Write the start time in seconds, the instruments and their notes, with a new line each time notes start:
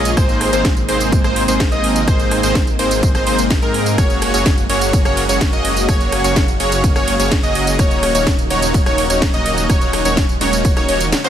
Already playing: detuned saw bass A#1, analog synth pad C#3 G#3 F4, supersaw synth A#3 C#4 F4 G#4 D#5, digital synth lead D#5
0.05 closed hi-hat, tambourine
0.17 detuned saw bass G#1, analog synth pad C3 A#3 D#4, supersaw synth A#3 C4 D#4 G#4 C5, digital synth lead C5, kick, cross-stick, closed hi-hat, tambourine
0.29 closed hi-hat, tambourine
0.41 cross-stick, open hi-hat
0.53 detuned saw bass G#1, supersaw synth A#3 C4 D#4 G#4 C5, digital synth lead C5, closed hi-hat, tambourine
0.65 kick, snare, closed hi-hat, tambourine
0.77 closed hi-hat, tambourine
0.89 detuned saw bass G#1, supersaw synth A#3 C4 D#4 G#4 C5, digital synth lead C5, open hi-hat
1.00 closed hi-hat, tambourine
1.12 kick, closed hi-hat, tambourine
1.24 detuned saw bass G#1, supersaw synth A#3 C4 D#4 G#4 C5, digital synth lead C5, cross-stick, closed hi-hat, tambourine
1.36 open hi-hat
1.48 detuned saw bass G#1, supersaw synth A#3 C4 D#4 G#4 C5, digital synth lead C5, closed hi-hat, tambourine
1.60 kick, snare, closed hi-hat, tambourine
1.72 detuned saw bass G#1, supersaw synth A#3 C4 D#4 G#4 D#5, digital synth lead D#5, closed hi-hat, tambourine
1.84 open hi-hat
1.96 closed hi-hat, tambourine
2.08 detuned saw bass G#1, supersaw synth A#3 C4 D#4 G#4 C5, digital synth lead C5, kick, cross-stick, closed hi-hat, tambourine
2.19 closed hi-hat, tambourine
2.31 cross-stick, open hi-hat
2.43 detuned saw bass G#1, supersaw synth A#3 C4 D#4 G#4 C5, digital synth lead C5, closed hi-hat, tambourine
2.55 kick, snare, closed hi-hat, tambourine
2.67 closed hi-hat, tambourine
2.79 detuned saw bass G#1, supersaw synth A#3 C4 D#4 G#4 C5, digital synth lead C5, open hi-hat
2.91 closed hi-hat, tambourine
3.03 kick, closed hi-hat, tambourine
3.15 detuned saw bass G#1, supersaw synth A#3 C4 D#4 G#4 C5, digital synth lead C5, cross-stick, closed hi-hat, tambourine
3.27 detuned saw bass G#1, supersaw synth A#3 C4 D#4 G#4 C5, digital synth lead C5, open hi-hat
3.39 closed hi-hat, tambourine
3.50 kick, snare, closed hi-hat, tambourine
3.62 detuned saw bass G#2, supersaw synth A#3 C4 D#4 G#4 A#4, digital synth lead A#4, closed hi-hat, tambourine
3.74 open hi-hat
3.86 closed hi-hat, tambourine
3.98 detuned saw bass F#1, analog synth pad C#3 F#4, supersaw synth A#3 C#4 F#4 G#4 C#5, digital synth lead C#5, kick, cross-stick, closed hi-hat, ride, tambourine
4.10 closed hi-hat, tambourine
4.22 cross-stick, open hi-hat, ride
4.34 detuned saw bass F#1, supersaw synth A#3 C#4 F#4 G#4 C#5, digital synth lead C#5, closed hi-hat, tambourine
4.46 kick, snare, closed hi-hat, ride, tambourine
4.58 closed hi-hat, tambourine
4.70 detuned saw bass F#1, supersaw synth A#3 C#4 F#4 G#4 C#5, digital synth lead C#5, open hi-hat, ride
4.81 closed hi-hat, tambourine
4.93 kick, closed hi-hat, ride, tambourine
5.05 detuned saw bass F#1, supersaw synth A#3 C#4 F#4 G#4 C#5, digital synth lead C#5, cross-stick, closed hi-hat, tambourine
5.17 open hi-hat, ride
5.29 detuned saw bass F#1, supersaw synth A#3 C#4 F#4 G#4 C#5, digital synth lead C#5, closed hi-hat, tambourine
5.41 kick, snare, closed hi-hat, ride, tambourine
5.53 detuned saw bass F#1, supersaw synth A#3 C#4 F#4 G#4 D#5, digital synth lead D#5, closed hi-hat, tambourine
5.65 open hi-hat, ride
5.77 closed hi-hat, tambourine
5.89 detuned saw bass F#1, supersaw synth A#3 C#4 F#4 G#4 C#5, digital synth lead C#5, kick, cross-stick, closed hi-hat, ride, tambourine
6.01 closed hi-hat, tambourine
6.12 cross-stick, open hi-hat, ride
6.24 detuned saw bass F#1, supersaw synth A#3 C#4 F#4 G#4 C#5, digital synth lead C#5, closed hi-hat, tambourine
6.36 kick, snare, closed hi-hat, ride, tambourine
6.48 closed hi-hat, tambourine
6.60 detuned saw bass F#1, supersaw synth A#3 C#4 F#4 G#4 C#5, digital synth lead C#5, open hi-hat, ride
6.72 closed hi-hat, tambourine
6.84 kick, closed hi-hat, ride, tambourine
6.96 detuned saw bass F#1, supersaw synth A#3 C#4 F#4 G#4 C#5, digital synth lead C#5, cross-stick, closed hi-hat, tambourine
7.08 open hi-hat, ride
7.19 detuned saw bass F#1, supersaw synth A#3 C#4 F#4 G#4 C#5, digital synth lead C#5, closed hi-hat, tambourine
7.31 kick, snare, closed hi-hat, ride, tambourine
7.43 detuned saw bass F#1, supersaw synth A#3 C#4 F#4 G#4 D#5, digital synth lead D#5, closed hi-hat, tambourine
7.55 open hi-hat, ride
7.67 closed hi-hat, tambourine
7.79 detuned saw bass D#1, analog synth pad F#3 D#4, supersaw synth A#3 C#4 D#4 F#4 C#5, digital synth lead C#5, kick, cross-stick, closed hi-hat, ride, tambourine
7.91 closed hi-hat, tambourine
8.03 cross-stick, open hi-hat, ride
8.15 detuned saw bass D#1, supersaw synth A#3 C#4 D#4 F#4 C#5, digital synth lead C#5, closed hi-hat, tambourine
8.27 kick, snare, closed hi-hat, ride, tambourine
8.39 closed hi-hat, tambourine
8.50 detuned saw bass D#1, supersaw synth A#3 C#4 D#4 F#4 C#5, digital synth lead C#5, open hi-hat, ride
8.62 closed hi-hat, tambourine
8.74 kick, closed hi-hat, ride, tambourine
8.86 detuned saw bass D#1, supersaw synth A#3 C#4 D#4 F#4 C#5, digital synth lead C#5, cross-stick, closed hi-hat, tambourine
8.98 open hi-hat, ride
9.10 detuned saw bass D#1, supersaw synth A#3 C#4 D#4 F#4 C#5, digital synth lead C#5, closed hi-hat, tambourine
9.22 kick, snare, closed hi-hat, ride, tambourine
9.34 detuned saw bass D#1, supersaw synth A#3 C#4 D#4 F#4 D#5, digital synth lead D#5, closed hi-hat, tambourine
9.46 open hi-hat, ride
9.58 closed hi-hat, tambourine
9.69 detuned saw bass D#1, analog synth pad G#3, supersaw synth A#3 C#4 D#4 F#4 C#5, digital synth lead C#5, kick, cross-stick, closed hi-hat, ride, tambourine
9.81 closed hi-hat, tambourine
9.93 cross-stick, open hi-hat, ride
10.05 detuned saw bass D#1, supersaw synth A#3 C#4 D#4 F#4 C#5, digital synth lead C#5, closed hi-hat, tambourine
10.17 kick, snare, closed hi-hat, ride, tambourine
10.29 closed hi-hat, tambourine
10.41 detuned saw bass D#1, supersaw synth A#3 C#4 D#4 F#4 C#5, digital synth lead C#5, snare, open hi-hat, ride
10.53 closed hi-hat, tambourine
10.65 kick, closed hi-hat, ride, tambourine
10.77 detuned saw bass D#1, supersaw synth A#3 C#4 D#4 F#4 C#5, digital synth lead C#5, cross-stick, closed hi-hat, tambourine
10.89 detuned saw bass D#1, supersaw synth A#3 C#4 D#4 F#4 C#5, digital synth lead C#5, open hi-hat, ride
11.00 closed hi-hat, tambourine
11.12 snare, closed hi-hat, ride, tambourine
11.24 supersaw synth A#3 C#4 D#4 F#4 C5, digital synth lead C5, closed hi-hat, tambourine